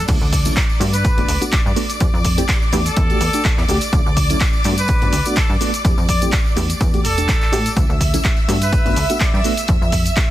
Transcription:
0.08 analog synth bass D2, reed electric piano F#3 A3 C#4 E4, string section D5 D6, kick, closed hi-hat, tambourine, crash, shaker
0.21 analog synth bass D2, tambourine
0.33 kick, open hi-hat, shaker
0.45 reed electric piano F#3 A3 C#4 E4, closed hi-hat, tambourine, shaker
0.57 kick, clap, closed hi-hat, shaker
0.70 tambourine
0.80 analog synth bass G2, reed electric piano A3 B3 D4 F#4, open hi-hat, shaker
0.93 trumpet section B4, closed hi-hat, tambourine, shaker
1.05 kick, closed hi-hat, tambourine, shaker
1.17 analog synth bass G1, reed electric piano A3 B3 D4 F#4, closed hi-hat, tambourine
1.28 analog synth bass D2, open hi-hat, shaker
1.41 reed electric piano A3 B3 D4 F#4, closed hi-hat, tambourine, shaker
1.52 trumpet section D5, kick, clap, closed hi-hat, shaker
1.66 analog synth bass G2, trumpet section D5, tambourine
1.76 reed electric piano A3 B3 D4 F#4, open hi-hat, shaker
1.90 closed hi-hat, tambourine, shaker
2.00 analog synth bass F2, reed electric piano A3 C4 E4 G4, kick, closed hi-hat, tambourine, shaker
2.14 analog synth bass F2, tambourine
2.25 kick, open hi-hat, shaker
2.37 reed electric piano A3 C4 E4 G4, closed hi-hat, tambourine, shaker
2.48 kick, clap, closed hi-hat, tambourine, shaker
2.62 tambourine
2.72 analog synth bass E2, reed electric piano A3 D4 F#4 G4, open hi-hat, shaker
2.85 trumpet section A4, closed hi-hat, tambourine, shaker
2.97 analog synth bass E2, kick, closed hi-hat, tambourine, shaker
3.09 reed electric piano A3 D4 F#4 G4, closed hi-hat, tambourine
3.21 analog synth bass E2, open hi-hat, shaker
3.33 reed electric piano A3 D4 F#4 G4, closed hi-hat, tambourine, shaker
3.45 kick, clap, closed hi-hat, tambourine, shaker
3.58 analog synth bass E2, clap, tambourine
3.68 analog synth bass D2, reed electric piano A3 D4 F#4 G4, open hi-hat, shaker
3.81 closed hi-hat, tambourine, shaker
3.92 analog synth bass D2, reed electric piano F#3 A3 C#4 E4, kick, closed hi-hat, shaker
4.06 analog synth bass D2, tambourine
4.17 kick, open hi-hat, shaker
4.30 reed electric piano F#3 A3 C#4 E4, closed hi-hat, tambourine, shaker
4.40 kick, clap, closed hi-hat, tambourine, shaker
4.53 tambourine
4.64 analog synth bass G2, reed electric piano A3 B3 D4 F#4, open hi-hat, shaker
4.78 trumpet section B4, closed hi-hat, tambourine, shaker
4.88 kick, closed hi-hat, tambourine, shaker
5.02 analog synth bass G1, reed electric piano A3 B3 D4 F#4, closed hi-hat, tambourine
5.13 analog synth bass D2, open hi-hat, shaker
5.25 reed electric piano A3 B3 D4 F#4, closed hi-hat, tambourine, shaker
5.36 trumpet section A4, kick, clap, closed hi-hat, tambourine, shaker
5.49 analog synth bass G2, tambourine
5.61 reed electric piano A3 B3 D4 F#4, open hi-hat, shaker
5.74 closed hi-hat, tambourine, shaker
5.84 analog synth bass F2, reed electric piano A3 C4 E4 G4, kick, closed hi-hat, tambourine, shaker
5.98 analog synth bass F2, tambourine
6.09 trumpet section D5, kick, open hi-hat, shaker
6.22 reed electric piano A3 C4 E4 G4, closed hi-hat, tambourine, shaker
6.32 kick, clap, closed hi-hat, tambourine, shaker
6.46 tambourine
6.56 analog synth bass E2, reed electric piano A3 D4 F#4 G4, open hi-hat, shaker
6.70 closed hi-hat, tambourine, shaker
6.81 analog synth bass E2, kick, closed hi-hat, tambourine, shaker
6.94 reed electric piano A3 D4 F#4 G4, closed hi-hat, tambourine
7.04 analog synth bass E1, trumpet section A4, open hi-hat, shaker
7.17 reed electric piano A3 D4 F#4 G4, closed hi-hat, tambourine, shaker
7.29 kick, clap, closed hi-hat, tambourine, shaker
7.41 clap, tambourine
7.52 analog synth bass A2, reed electric piano A3 D4 F#4 G4, open hi-hat, shaker
7.66 closed hi-hat, tambourine, shaker
7.76 analog synth bass D2, reed electric piano F#3 A3 C#4 E4, string section E5 E6, kick, closed hi-hat, tambourine, shaker
7.90 analog synth bass D2, tambourine
8.01 kick, open hi-hat, shaker
8.13 reed electric piano F#3 A3 C#4 E4, closed hi-hat, tambourine, shaker
8.25 kick, clap, closed hi-hat, shaker
8.37 tambourine
8.48 analog synth bass G2, reed electric piano A3 B3 D4 F#4, open hi-hat, shaker
8.62 trumpet section B4, closed hi-hat, tambourine, shaker
8.72 kick, closed hi-hat, tambourine, shaker
8.85 analog synth bass G1, reed electric piano A3 B3 D4 F#4, closed hi-hat, tambourine
8.96 analog synth bass D2, open hi-hat, shaker
9.10 reed electric piano A3 B3 D4 F#4, closed hi-hat, tambourine, shaker
9.20 trumpet section D5, kick, clap, closed hi-hat, shaker
9.34 analog synth bass G2, trumpet section D5, tambourine
9.44 reed electric piano A3 B3 D4 F#4, open hi-hat, shaker
9.57 closed hi-hat, tambourine, shaker
9.68 analog synth bass F2, kick, closed hi-hat, tambourine, shaker
9.82 analog synth bass F2, tambourine
9.92 kick, open hi-hat, shaker
10.06 closed hi-hat, tambourine, shaker
10.16 kick, clap, closed hi-hat, tambourine, shaker

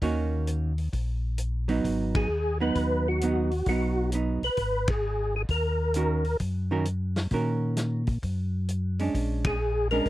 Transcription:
0.02 tonewheel organ D#2, hollow-body jazz guitar D#3 A#3 C#4 F#4, kick, open hi-hat
0.47 closed hi-hat
0.78 open hi-hat
0.93 tonewheel organ A#1, kick, open hi-hat
1.38 closed hi-hat
1.68 hollow-body jazz guitar F#3 B3 D#4, open hi-hat
1.84 tonewheel organ G#1, kick, open hi-hat
2.15 tonewheel organ G#4, kick, ride
2.28 tonewheel organ D#2
2.60 hollow-body jazz guitar F#3 B3 D#4, tonewheel organ B4
2.75 tonewheel organ D#2, kick, open hi-hat
3.08 tonewheel organ F#4
3.21 hollow-body jazz guitar F#3 B3 D#4, closed hi-hat
3.51 open hi-hat
3.66 tonewheel organ B1 F#4, hollow-body jazz guitar F#3 B3 D#4, kick, open hi-hat
4.12 hollow-body jazz guitar F#3 B3 D#4, closed hi-hat
4.41 tonewheel organ B1 B4, open hi-hat
4.57 tonewheel organ G#1, kick, open hi-hat
4.88 tonewheel organ G#4, kick, ride
5.36 tonewheel organ G#4
5.49 tonewheel organ D#2 A#4, kick, open hi-hat
5.94 hollow-body jazz guitar D#3 C#4 F#4 A#4, closed hi-hat
6.25 open hi-hat
6.40 tonewheel organ F#2, kick, open hi-hat
6.71 hollow-body jazz guitar D#3 C#4 F#4 A#4
6.85 closed hi-hat
7.16 snare, open hi-hat
7.31 tonewheel organ A#2, hollow-body jazz guitar D#3 C#4 F#4 A#4, kick, open hi-hat
7.77 snare, closed hi-hat
8.07 kick, open hi-hat
8.22 tonewheel organ F#2, kick, open hi-hat
8.68 closed hi-hat
8.99 hollow-body jazz guitar G#3 C#4 D4, open hi-hat
9.14 tonewheel organ A#1, kick, open hi-hat
9.44 tonewheel organ G#4, kick, ride
9.91 hollow-body jazz guitar G#3 C#4 D4, tonewheel organ A#4, open hi-hat
10.05 tonewheel organ F1, kick, open hi-hat

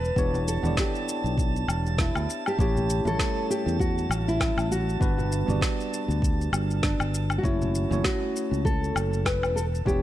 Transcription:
Already playing: fretless electric bass E1, nylon-string guitar B4, synth texture A5
0.05 shaker
0.16 fretless electric bass E1, tine electric piano B3 D4 E4 G4 C#5, kick, shaker
0.34 low conga, shaker
0.48 nylon-string guitar A4, shaker
0.63 fretless electric bass E1, tine electric piano B3 D4 E4 G4, high conga, low conga, shaker
0.67 tine electric piano D5
0.77 nylon-string guitar G4, kick, snare, shaker
0.95 shaker
1.09 shaker
1.24 fretless electric bass B1, shaker
1.38 kick, shaker
1.56 shaker
1.68 fretless electric bass E1, low woodblock, shaker
1.86 shaker
1.98 nylon-string guitar E4, kick, snare, shaker
2.15 fretless electric bass D2, low woodblock, shaker
2.30 shaker
2.46 nylon-string guitar G4, low woodblock, shaker
2.58 fretless electric bass A1, tine electric piano A3 C#4 E4 G4 C#5, nylon-string guitar G4, kick, shaker
2.76 low conga, shaker
2.90 shaker
3.05 fretless electric bass A1, tine electric piano G3 A3 C#4 E4 C#5, nylon-string guitar A4, high conga, low conga, shaker
3.19 kick, snare, shaker
3.50 nylon-string guitar G4, shaker
3.66 fretless electric bass E2, shaker
3.80 nylon-string guitar F#4, kick, shaker
3.98 shaker
4.09 fretless electric bass A1, low woodblock, shaker
4.21 nylon-string guitar F#4
4.28 nylon-string guitar E4, shaker
4.40 kick, snare, low woodblock, shaker
4.57 fretless electric bass A1, low woodblock, shaker
4.71 nylon-string guitar F#4, shaker
4.89 shaker
5.00 fretless electric bass G1, tine electric piano G3 B3 D4 F#4 B4, kick, shaker
5.18 low conga, shaker
5.32 shaker
5.46 fretless electric bass G1, tine electric piano B3 D4 F#4 G4 D5, high conga, low conga, shaker
5.61 kick, snare, shaker
5.80 shaker
5.94 shaker
6.08 fretless electric bass D2, shaker
6.22 kick, shaker
6.41 shaker
6.52 fretless electric bass G1, low woodblock, shaker
6.71 shaker
6.83 nylon-string guitar D4, kick, snare, shaker
6.99 fretless electric bass G1, low woodblock, shaker
7.14 shaker
7.30 low woodblock, shaker
7.38 nylon-string guitar F#4
7.43 fretless electric bass F#1, tine electric piano A3 C#4 E4 F#4 C#5, nylon-string guitar E4, kick, shaker
7.62 low conga, shaker
7.75 shaker
7.89 fretless electric bass F#1, tine electric piano A3 C#4 E4 F#4 C#5, high conga, low conga, shaker
8.04 nylon-string guitar F#4, kick, snare, shaker
8.36 shaker
8.51 fretless electric bass C#2, shaker
8.65 nylon-string guitar A4, kick, shaker
8.84 shaker
8.95 fretless electric bass F#1, low woodblock, shaker
9.13 shaker
9.25 nylon-string guitar B4, kick, snare, low woodblock, shaker
9.42 fretless electric bass E1, low woodblock, shaker
9.56 nylon-string guitar A4, shaker
9.75 shaker
9.85 fretless electric bass E1, tine electric piano B3 D4 E4 G4 C#5, nylon-string guitar G4, kick, shaker

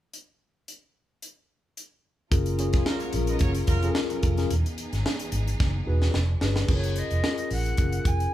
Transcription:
0.14 closed hi-hat
0.68 closed hi-hat
1.22 closed hi-hat
1.77 closed hi-hat
2.31 fingered electric bass F#1, string section F#3 C#4 F4 A#4, tine electric piano C#4 F4 G#4 A#4, kick, closed hi-hat
2.46 closed hi-hat
2.58 tine electric piano C#4 F4 G#4 C#5, closed hi-hat
2.73 fingered electric bass F1, horn section G#3 F4 G#4, kick, snare, closed hi-hat
2.85 horn section F#3 F4 A#4, snare
3.00 horn section A#3 F#4 C#5, closed hi-hat
3.13 fingered electric bass A#1, tine electric piano C#4 F4 G#4 A#4, closed hi-hat
3.27 horn section D#4 B4 D#5, closed hi-hat
3.39 fingered electric bass F#1, horn section A#3 F#4 C#5, kick, closed hi-hat
3.55 closed hi-hat
3.67 fingered electric bass F1, horn section F#3 F4 A#4, kick, closed hi-hat
3.83 tine electric piano C#4 F4 G#4 A4, closed hi-hat
3.91 tine electric piano A#4
3.95 snare
4.10 closed hi-hat
4.23 fingered electric bass F1, kick, closed hi-hat
4.38 tine electric piano C#4 F4 G#4 A#4, snare, closed hi-hat
4.50 fingered electric bass E1, string section E3 B3 D#4 G#4, closed hi-hat
4.66 closed hi-hat
4.78 closed hi-hat
4.93 fingered electric bass G#1, snare, closed hi-hat
5.06 snare
5.19 closed hi-hat
5.32 fingered electric bass G#1, closed hi-hat
5.48 closed hi-hat
5.60 fingered electric bass F#1, kick, snare
5.87 fingered electric bass E1, tine electric piano D#4 F#4 G#4 B4
6.02 snare
6.14 fingered electric bass F1, string section F3 D4, snare
6.41 fingered electric bass G1, tine electric piano D4 G4 G#4 B4, snare
6.56 snare
6.68 fingered electric bass F#1, tine electric piano C#4 F4 G#4 A#4, flute C#5, kick, crash
6.84 closed hi-hat
6.96 flute D#5, closed hi-hat
7.11 fingered electric bass F1, closed hi-hat
7.24 tine electric piano C#4 F4 G#4 A#4, snare
7.38 closed hi-hat
7.51 fingered electric bass A#1, flute F#5, open hi-hat
7.66 closed hi-hat
7.77 fingered electric bass F#1, tine electric piano C#4 F4 G#4 A#4, kick, closed hi-hat
7.92 closed hi-hat
8.05 fingered electric bass F1, flute G#5, kick, closed hi-hat
8.20 closed hi-hat

